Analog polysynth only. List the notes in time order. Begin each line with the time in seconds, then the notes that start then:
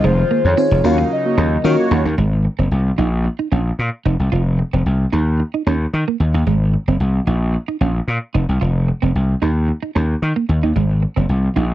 0.84 A#3 F#4 C#5
1.25 A#3 F#4 C#5
1.65 A#3 F#4 C#5